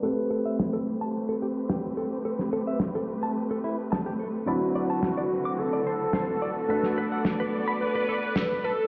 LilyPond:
<<
  \new Staff \with { instrumentName = "Clean electric guitar" } { \time 4/4 \key a \dorian \tempo 4 = 108 a'16 r16 a'16 e''16 r16 a'16 r16 a''16 r16 a'16 g'16 r16 g'16 r16 a'16 r16 | a'16 r16 a'16 e''16 r16 a'16 r16 a''16 r16 a'16 e'16 r16 a''16 g'16 a'16 r16 | d''16 r16 d''16 a''16 r16 d''16 r16 d'''16 r16 d''16 c''16 r16 c''16 r16 d''16 r16 | b'16 r16 b'16 fis''16 r16 b'16 r16 b''16 r16 b'16 a'16 r16 a'16 r16 b'16 r16 | }
  \new Staff \with { instrumentName = "Analog synth lead" } { \time 4/4 \key a \dorian r1 | r1 | fis'2 a'2 | a'4. r8 b'4. a'8 | }
  \new Staff \with { instrumentName = "String section" } { \time 4/4 \key a \dorian <a c' g' b'>1~ | <a c' g' b'>1 | <d c' e' fis'>1 | <b a' d''>1 | }
  \new Staff \with { instrumentName = "Grand piano" } { \time 4/4 \key a \dorian <a c' g' b'>1~ | <a c' g' b'>1 | <fis c' d' e' b''>1 | <a d' fis' b'>1 | }
  \new DrumStaff \with { instrumentName = "Drums" } \drummode { \time 4/4 r4 sn4 r4 sn4 | r16 sn8. sn4 r4 sn4 | r4 sn4 r4 sn4 | r16 sn8. sn4 r4 sn4 | }
>>